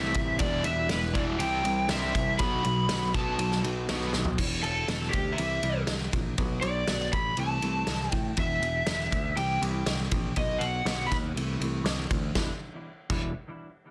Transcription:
Already playing: C2 A2 C3 E3 A3 C4 E4 E5
0.14 C2 A2 E3 C4 E4, kick, ride
0.19 A3
0.39 E1 E2 B2 E3 G3 D4 D5, kick, ride
0.43 E4
0.64 E1 E2 B2 G3 D4 E4 E5, ride
0.68 E3
0.89 E1 E2 B2 E3 G3 D4 B4, snare, ride
0.93 E4
1.13 E1 E2 B2 E3 D5, kick, ride
1.38 C2 C3 G3 C4 G5, ride
1.42 E3 G3 C4 E4
1.63 C2 C3 G3 C4 E4, ride
1.68 G3
1.88 C2 C3 E3 G3 C4 E5, snare, ride
1.92 E4
2.14 C2 C3 G3 C4 E4, kick, ride
2.38 B1 B2 F#3 B3 D#4 B5, kick, ride
2.42 F#4
2.63 B1 B2 F#3 B3 D#4 F#4, ride
2.88 B1 B2 F#3 B3 D#4 F#4, snare, ride
3.14 B2 F#3 B3 A5, kick, ride
3.38 B1 B2 F#3, ride
3.52 snare
3.62 B1 B2 F#3 B3 D#4 F#4, ride
3.88 B1 B2 F#3 B3 D#4 F#4, snare, ride
4.13 B1 B2 F#3 B3 D#4 F#4, snare
4.25 floor tom
4.38 E1 E2 B2 E3, kick, crash
4.62 E1 E2 B2 A4, ride
4.88 E1 E2 B2 E3, snare, ride
5.09 G4
5.13 D2, kick, ride
5.32 E5
5.38 C2 C3 E3 G3, ride
5.62 C2 C3 E3 G3, ride
5.87 C2 E3, snare, ride
6.13 A#1 C3 E3, kick, ride
6.38 B1 B2 F#3 B3, kick, ride
6.61 B1 B2 F#3 D5, ride
6.88 B1 B2 F#3 B3, snare, ride
7.13 A1 B2 F#3 B5, kick, ride
7.37 C2 C3 E3 A3 A5, ride
7.62 C2 C3 E3 A3, ride
7.87 C2 C3 E3, snare, ride
8.11 A2 C3 E3 G5, kick, ride
8.37 E1 E2 B2 E3 E5, kick, ride
8.60 E1 E2 B2, ride
8.86 E1 E2 B2 E3, snare, ride
9.12 D2 E2 B2, kick, ride
9.36 C2 C3 E3 G3 G5, ride
9.61 C2 C3 E3 G3, ride
9.86 C2 E3, snare, ride
10.11 A#1 C3 E3, kick, ride
10.36 B1 B2 F#3 B3 D#5, kick, ride
10.58 B1 B2 F#3 F#5, ride
10.85 B1 B2 F#3 B3, snare, ride
11.07 B5
11.12 D#2 B2 F#3, kick, snare, ride
11.35 C2 C3 E3 A3, ride
11.60 C2 C3 E3 A3, ride
11.84 C2 C3 E3, snare, ride
12.11 D2 C3 E3, kick, ride
12.35 E1 E2 B2 E3 G3 D4 E4, kick, snare
13.10 E1 E2 B2 E3 G3 D4 E4, kick, crash

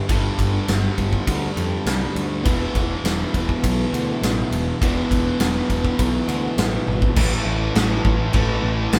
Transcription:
0.08 G1 G2 D3 G3, kick, ride
0.38 G1, kick, ride
0.68 G1, snare, ride
0.98 G1, kick, ride
1.13 kick
1.27 D2, kick, ride
1.56 F2, ride
1.86 C2, snare, ride
2.15 D2, ride
2.43 E1 E2 B2 E3, kick, ride
2.75 E1, kick, ride
3.04 E1, snare, ride
3.34 E1, kick, ride
3.49 kick
3.64 B1, kick, ride
3.93 D2, ride
4.22 A1, snare, ride
4.51 E1, ride
4.81 E1 E2 B2 E3, kick, ride
5.11 E1, kick, ride
5.40 E1, snare, ride
5.70 E1, kick, ride
5.85 kick
5.99 B1, kick, ride
6.28 D2, ride
6.57 A1, snare, ride
6.87 G#1, high tom
7.02 kick
7.16 A1 A2 E3 A3, kick, crash
7.46 A1
7.75 A1, snare, crash
8.05 A1, kick
8.32 A1 A2 E3 A3, kick, crash
8.63 A1
8.93 A1, snare, crash

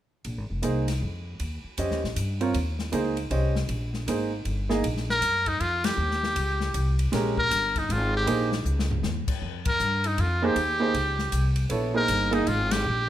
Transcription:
0.24 A#1, ride
0.37 G#1
0.50 F1
0.62 C2 A#3 D#4 G#4 C5, hi-hat pedal, ride
0.88 snare, ride
1.02 F2
1.40 D#2, ride
1.64 muted upright bass stroke
1.78 F2 C#4 G4 C5 D#5, hi-hat pedal, ride
1.91 D#2, snare
2.03 A#1, snare
2.16 G2, hi-hat pedal, ride
2.41 C4 F4 A#4 C#5, ride
2.54 D#2, ride
2.79 snare
2.92 C#2 A#3 D#4 G#4 C5, hi-hat pedal, ride
3.17 ride
3.30 C2 C#4 G4 C5 D#5, ride
3.56 snare
3.69 A#1, ride
3.94 snare
4.07 G#1 A#3 D#4 G#4 C5, hi-hat pedal, ride
4.45 G1, ride
4.69 A#3 D#4 G#4 D#5, snare
4.83 A#1, ride
4.97 snare
5.10 A#4, snare
5.21 F#2, hi-hat pedal, ride
5.46 D#4, kick, ride
5.60 F2 F4, ride
5.84 G4, snare, ride
5.97 D#2
6.11 snare
6.23 snare
6.36 C#2, ride
6.60 snare
6.74 C2, hi-hat pedal, ride
6.99 ride
7.12 A#1 G#3 C#4 G4 A#4, snare, ride
7.37 A#4, kick
7.51 G1, hi-hat pedal, ride
7.76 D#4, kick, ride
7.89 G#1 F4, ride
8.17 G4
8.27 A#1 A#3 D#4 G#4 C5, ride
8.52 snare
8.65 C#2, hi-hat pedal
8.79 snare
8.91 floor tom
9.03 D#2, snare
9.28 muted upright bass stroke, kick, crash
9.42 F2
9.65 A#4, kick, ride
9.79 G2, hi-hat pedal
10.04 D#4, ride
10.18 F2 F4, ride
10.42 A#3 D#4 G4 G#4 C5
10.56 D#2, ride
10.80 A#3 D#4 G#4 C5
10.94 C#2, ride
11.19 snare
11.32 C2, hi-hat pedal, ride
11.56 ride
11.70 A#1 B3 E4 A4 C#5, ride
11.94 A#3 D#4 G#4 A#4 C5
12.08 G1, hi-hat pedal, ride
12.31 A#3 D#4 G#4 D#5, ride
12.47 G#1 F4, ride
12.71 G4, snare, ride
12.85 A#1

